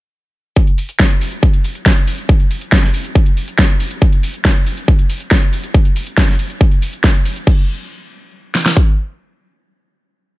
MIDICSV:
0, 0, Header, 1, 2, 480
1, 0, Start_track
1, 0, Tempo, 431655
1, 628, Time_signature, 4, 2, 24, 8
1, 11543, End_track
2, 0, Start_track
2, 0, Title_t, "Drums"
2, 628, Note_on_c, 9, 36, 119
2, 628, Note_on_c, 9, 42, 81
2, 628, Note_on_c, 9, 82, 40
2, 739, Note_off_c, 9, 36, 0
2, 739, Note_off_c, 9, 42, 0
2, 739, Note_off_c, 9, 82, 0
2, 748, Note_on_c, 9, 42, 54
2, 748, Note_on_c, 9, 82, 20
2, 859, Note_off_c, 9, 42, 0
2, 859, Note_off_c, 9, 82, 0
2, 868, Note_on_c, 9, 46, 108
2, 868, Note_on_c, 9, 82, 70
2, 979, Note_off_c, 9, 46, 0
2, 979, Note_off_c, 9, 82, 0
2, 988, Note_on_c, 9, 42, 55
2, 988, Note_on_c, 9, 82, 29
2, 1099, Note_off_c, 9, 42, 0
2, 1099, Note_off_c, 9, 82, 0
2, 1108, Note_on_c, 9, 36, 114
2, 1108, Note_on_c, 9, 38, 127
2, 1108, Note_on_c, 9, 42, 82
2, 1108, Note_on_c, 9, 82, 41
2, 1219, Note_off_c, 9, 36, 0
2, 1219, Note_off_c, 9, 38, 0
2, 1219, Note_off_c, 9, 42, 0
2, 1219, Note_off_c, 9, 82, 0
2, 1228, Note_on_c, 9, 42, 55
2, 1228, Note_on_c, 9, 82, 20
2, 1340, Note_off_c, 9, 42, 0
2, 1340, Note_off_c, 9, 82, 0
2, 1348, Note_on_c, 9, 46, 103
2, 1348, Note_on_c, 9, 82, 70
2, 1459, Note_off_c, 9, 46, 0
2, 1459, Note_off_c, 9, 82, 0
2, 1468, Note_on_c, 9, 42, 55
2, 1468, Note_on_c, 9, 82, 29
2, 1579, Note_off_c, 9, 42, 0
2, 1579, Note_off_c, 9, 82, 0
2, 1588, Note_on_c, 9, 36, 120
2, 1588, Note_on_c, 9, 42, 84
2, 1588, Note_on_c, 9, 82, 39
2, 1699, Note_off_c, 9, 36, 0
2, 1700, Note_off_c, 9, 42, 0
2, 1700, Note_off_c, 9, 82, 0
2, 1708, Note_on_c, 9, 42, 53
2, 1708, Note_on_c, 9, 82, 20
2, 1819, Note_off_c, 9, 42, 0
2, 1819, Note_off_c, 9, 82, 0
2, 1828, Note_on_c, 9, 46, 106
2, 1828, Note_on_c, 9, 82, 72
2, 1939, Note_off_c, 9, 46, 0
2, 1939, Note_off_c, 9, 82, 0
2, 1948, Note_on_c, 9, 42, 55
2, 1948, Note_on_c, 9, 82, 30
2, 2059, Note_off_c, 9, 42, 0
2, 2059, Note_off_c, 9, 82, 0
2, 2068, Note_on_c, 9, 36, 113
2, 2068, Note_on_c, 9, 38, 122
2, 2068, Note_on_c, 9, 42, 83
2, 2068, Note_on_c, 9, 82, 39
2, 2179, Note_off_c, 9, 36, 0
2, 2180, Note_off_c, 9, 38, 0
2, 2180, Note_off_c, 9, 42, 0
2, 2180, Note_off_c, 9, 82, 0
2, 2188, Note_on_c, 9, 42, 56
2, 2188, Note_on_c, 9, 82, 20
2, 2300, Note_off_c, 9, 42, 0
2, 2300, Note_off_c, 9, 82, 0
2, 2308, Note_on_c, 9, 46, 105
2, 2308, Note_on_c, 9, 82, 67
2, 2419, Note_off_c, 9, 46, 0
2, 2419, Note_off_c, 9, 82, 0
2, 2428, Note_on_c, 9, 42, 54
2, 2428, Note_on_c, 9, 82, 29
2, 2539, Note_off_c, 9, 42, 0
2, 2539, Note_off_c, 9, 82, 0
2, 2548, Note_on_c, 9, 36, 123
2, 2548, Note_on_c, 9, 42, 78
2, 2548, Note_on_c, 9, 82, 41
2, 2659, Note_off_c, 9, 36, 0
2, 2659, Note_off_c, 9, 42, 0
2, 2659, Note_off_c, 9, 82, 0
2, 2668, Note_on_c, 9, 42, 51
2, 2668, Note_on_c, 9, 82, 20
2, 2779, Note_off_c, 9, 42, 0
2, 2779, Note_off_c, 9, 82, 0
2, 2787, Note_on_c, 9, 46, 111
2, 2787, Note_on_c, 9, 82, 73
2, 2899, Note_off_c, 9, 46, 0
2, 2899, Note_off_c, 9, 82, 0
2, 2907, Note_on_c, 9, 42, 50
2, 2907, Note_on_c, 9, 82, 30
2, 3019, Note_off_c, 9, 42, 0
2, 3019, Note_off_c, 9, 82, 0
2, 3028, Note_on_c, 9, 36, 122
2, 3028, Note_on_c, 9, 38, 127
2, 3028, Note_on_c, 9, 42, 84
2, 3028, Note_on_c, 9, 82, 43
2, 3139, Note_off_c, 9, 36, 0
2, 3139, Note_off_c, 9, 38, 0
2, 3139, Note_off_c, 9, 42, 0
2, 3139, Note_off_c, 9, 82, 0
2, 3148, Note_on_c, 9, 38, 39
2, 3148, Note_on_c, 9, 42, 53
2, 3148, Note_on_c, 9, 82, 21
2, 3259, Note_off_c, 9, 38, 0
2, 3259, Note_off_c, 9, 42, 0
2, 3259, Note_off_c, 9, 82, 0
2, 3268, Note_on_c, 9, 46, 108
2, 3268, Note_on_c, 9, 82, 73
2, 3379, Note_off_c, 9, 46, 0
2, 3379, Note_off_c, 9, 82, 0
2, 3388, Note_on_c, 9, 42, 52
2, 3388, Note_on_c, 9, 82, 29
2, 3499, Note_off_c, 9, 42, 0
2, 3499, Note_off_c, 9, 82, 0
2, 3508, Note_on_c, 9, 36, 126
2, 3508, Note_on_c, 9, 42, 78
2, 3508, Note_on_c, 9, 82, 38
2, 3619, Note_off_c, 9, 36, 0
2, 3619, Note_off_c, 9, 42, 0
2, 3619, Note_off_c, 9, 82, 0
2, 3627, Note_on_c, 9, 42, 52
2, 3627, Note_on_c, 9, 82, 21
2, 3739, Note_off_c, 9, 42, 0
2, 3739, Note_off_c, 9, 82, 0
2, 3748, Note_on_c, 9, 46, 111
2, 3748, Note_on_c, 9, 82, 71
2, 3859, Note_off_c, 9, 46, 0
2, 3859, Note_off_c, 9, 82, 0
2, 3868, Note_on_c, 9, 42, 57
2, 3868, Note_on_c, 9, 82, 31
2, 3979, Note_off_c, 9, 42, 0
2, 3979, Note_off_c, 9, 82, 0
2, 3988, Note_on_c, 9, 36, 118
2, 3988, Note_on_c, 9, 38, 126
2, 3988, Note_on_c, 9, 42, 78
2, 3988, Note_on_c, 9, 82, 41
2, 4099, Note_off_c, 9, 36, 0
2, 4099, Note_off_c, 9, 38, 0
2, 4099, Note_off_c, 9, 42, 0
2, 4099, Note_off_c, 9, 82, 0
2, 4108, Note_on_c, 9, 42, 54
2, 4108, Note_on_c, 9, 82, 20
2, 4219, Note_off_c, 9, 42, 0
2, 4219, Note_off_c, 9, 82, 0
2, 4227, Note_on_c, 9, 46, 106
2, 4227, Note_on_c, 9, 82, 70
2, 4339, Note_off_c, 9, 46, 0
2, 4339, Note_off_c, 9, 82, 0
2, 4347, Note_on_c, 9, 42, 55
2, 4347, Note_on_c, 9, 82, 31
2, 4458, Note_off_c, 9, 42, 0
2, 4458, Note_off_c, 9, 82, 0
2, 4467, Note_on_c, 9, 42, 80
2, 4467, Note_on_c, 9, 82, 41
2, 4468, Note_on_c, 9, 36, 127
2, 4578, Note_off_c, 9, 42, 0
2, 4578, Note_off_c, 9, 82, 0
2, 4579, Note_off_c, 9, 36, 0
2, 4587, Note_on_c, 9, 42, 52
2, 4587, Note_on_c, 9, 82, 21
2, 4698, Note_off_c, 9, 42, 0
2, 4698, Note_off_c, 9, 82, 0
2, 4707, Note_on_c, 9, 46, 117
2, 4707, Note_on_c, 9, 82, 73
2, 4818, Note_off_c, 9, 46, 0
2, 4818, Note_off_c, 9, 82, 0
2, 4827, Note_on_c, 9, 42, 51
2, 4827, Note_on_c, 9, 82, 31
2, 4938, Note_off_c, 9, 42, 0
2, 4938, Note_off_c, 9, 82, 0
2, 4947, Note_on_c, 9, 38, 126
2, 4947, Note_on_c, 9, 42, 80
2, 4947, Note_on_c, 9, 82, 43
2, 4948, Note_on_c, 9, 36, 127
2, 5058, Note_off_c, 9, 38, 0
2, 5058, Note_off_c, 9, 42, 0
2, 5058, Note_off_c, 9, 82, 0
2, 5059, Note_off_c, 9, 36, 0
2, 5067, Note_on_c, 9, 42, 54
2, 5067, Note_on_c, 9, 82, 21
2, 5179, Note_off_c, 9, 42, 0
2, 5179, Note_off_c, 9, 82, 0
2, 5187, Note_on_c, 9, 46, 114
2, 5187, Note_on_c, 9, 82, 70
2, 5299, Note_off_c, 9, 46, 0
2, 5299, Note_off_c, 9, 82, 0
2, 5308, Note_on_c, 9, 42, 52
2, 5308, Note_on_c, 9, 82, 31
2, 5419, Note_off_c, 9, 42, 0
2, 5419, Note_off_c, 9, 82, 0
2, 5427, Note_on_c, 9, 42, 81
2, 5427, Note_on_c, 9, 82, 42
2, 5428, Note_on_c, 9, 36, 127
2, 5539, Note_off_c, 9, 36, 0
2, 5539, Note_off_c, 9, 42, 0
2, 5539, Note_off_c, 9, 82, 0
2, 5548, Note_on_c, 9, 42, 51
2, 5548, Note_on_c, 9, 82, 20
2, 5659, Note_off_c, 9, 42, 0
2, 5659, Note_off_c, 9, 82, 0
2, 5667, Note_on_c, 9, 46, 113
2, 5667, Note_on_c, 9, 82, 74
2, 5778, Note_off_c, 9, 46, 0
2, 5778, Note_off_c, 9, 82, 0
2, 5787, Note_on_c, 9, 42, 52
2, 5787, Note_on_c, 9, 82, 31
2, 5898, Note_off_c, 9, 42, 0
2, 5898, Note_off_c, 9, 82, 0
2, 5907, Note_on_c, 9, 38, 121
2, 5907, Note_on_c, 9, 42, 73
2, 5907, Note_on_c, 9, 82, 40
2, 5908, Note_on_c, 9, 36, 122
2, 6018, Note_off_c, 9, 38, 0
2, 6018, Note_off_c, 9, 42, 0
2, 6018, Note_off_c, 9, 82, 0
2, 6019, Note_off_c, 9, 36, 0
2, 6027, Note_on_c, 9, 42, 51
2, 6027, Note_on_c, 9, 82, 20
2, 6138, Note_off_c, 9, 42, 0
2, 6138, Note_off_c, 9, 82, 0
2, 6147, Note_on_c, 9, 46, 109
2, 6147, Note_on_c, 9, 82, 72
2, 6258, Note_off_c, 9, 46, 0
2, 6258, Note_off_c, 9, 82, 0
2, 6267, Note_on_c, 9, 42, 53
2, 6267, Note_on_c, 9, 82, 33
2, 6378, Note_off_c, 9, 42, 0
2, 6378, Note_off_c, 9, 82, 0
2, 6387, Note_on_c, 9, 42, 74
2, 6387, Note_on_c, 9, 82, 45
2, 6388, Note_on_c, 9, 36, 121
2, 6498, Note_off_c, 9, 42, 0
2, 6498, Note_off_c, 9, 82, 0
2, 6499, Note_off_c, 9, 36, 0
2, 6507, Note_on_c, 9, 42, 49
2, 6507, Note_on_c, 9, 82, 22
2, 6619, Note_off_c, 9, 42, 0
2, 6619, Note_off_c, 9, 82, 0
2, 6627, Note_on_c, 9, 46, 113
2, 6627, Note_on_c, 9, 82, 75
2, 6738, Note_off_c, 9, 46, 0
2, 6738, Note_off_c, 9, 82, 0
2, 6747, Note_on_c, 9, 42, 51
2, 6747, Note_on_c, 9, 82, 33
2, 6858, Note_off_c, 9, 42, 0
2, 6858, Note_off_c, 9, 82, 0
2, 6867, Note_on_c, 9, 38, 121
2, 6867, Note_on_c, 9, 42, 78
2, 6867, Note_on_c, 9, 82, 45
2, 6868, Note_on_c, 9, 36, 124
2, 6979, Note_off_c, 9, 36, 0
2, 6979, Note_off_c, 9, 38, 0
2, 6979, Note_off_c, 9, 42, 0
2, 6979, Note_off_c, 9, 82, 0
2, 6987, Note_on_c, 9, 38, 36
2, 6987, Note_on_c, 9, 42, 50
2, 6987, Note_on_c, 9, 82, 21
2, 7099, Note_off_c, 9, 38, 0
2, 7099, Note_off_c, 9, 42, 0
2, 7099, Note_off_c, 9, 82, 0
2, 7107, Note_on_c, 9, 46, 107
2, 7107, Note_on_c, 9, 82, 72
2, 7218, Note_off_c, 9, 46, 0
2, 7218, Note_off_c, 9, 82, 0
2, 7227, Note_on_c, 9, 42, 52
2, 7227, Note_on_c, 9, 82, 31
2, 7338, Note_off_c, 9, 42, 0
2, 7338, Note_off_c, 9, 82, 0
2, 7347, Note_on_c, 9, 42, 77
2, 7347, Note_on_c, 9, 82, 45
2, 7348, Note_on_c, 9, 36, 127
2, 7458, Note_off_c, 9, 42, 0
2, 7458, Note_off_c, 9, 82, 0
2, 7459, Note_off_c, 9, 36, 0
2, 7467, Note_on_c, 9, 42, 51
2, 7467, Note_on_c, 9, 82, 21
2, 7578, Note_off_c, 9, 42, 0
2, 7578, Note_off_c, 9, 82, 0
2, 7587, Note_on_c, 9, 46, 110
2, 7587, Note_on_c, 9, 82, 81
2, 7698, Note_off_c, 9, 46, 0
2, 7698, Note_off_c, 9, 82, 0
2, 7707, Note_on_c, 9, 42, 51
2, 7707, Note_on_c, 9, 82, 32
2, 7818, Note_off_c, 9, 42, 0
2, 7818, Note_off_c, 9, 82, 0
2, 7827, Note_on_c, 9, 38, 119
2, 7827, Note_on_c, 9, 42, 75
2, 7827, Note_on_c, 9, 82, 43
2, 7828, Note_on_c, 9, 36, 121
2, 7938, Note_off_c, 9, 38, 0
2, 7938, Note_off_c, 9, 42, 0
2, 7938, Note_off_c, 9, 82, 0
2, 7939, Note_off_c, 9, 36, 0
2, 7947, Note_on_c, 9, 42, 49
2, 7947, Note_on_c, 9, 82, 22
2, 8058, Note_off_c, 9, 42, 0
2, 8058, Note_off_c, 9, 82, 0
2, 8067, Note_on_c, 9, 46, 107
2, 8067, Note_on_c, 9, 82, 74
2, 8178, Note_off_c, 9, 46, 0
2, 8178, Note_off_c, 9, 82, 0
2, 8187, Note_on_c, 9, 42, 51
2, 8187, Note_on_c, 9, 82, 32
2, 8298, Note_off_c, 9, 42, 0
2, 8298, Note_off_c, 9, 82, 0
2, 8307, Note_on_c, 9, 49, 86
2, 8308, Note_on_c, 9, 36, 114
2, 8418, Note_off_c, 9, 49, 0
2, 8419, Note_off_c, 9, 36, 0
2, 9508, Note_on_c, 9, 38, 65
2, 9619, Note_off_c, 9, 38, 0
2, 9628, Note_on_c, 9, 38, 79
2, 9739, Note_off_c, 9, 38, 0
2, 9748, Note_on_c, 9, 36, 91
2, 9859, Note_off_c, 9, 36, 0
2, 11543, End_track
0, 0, End_of_file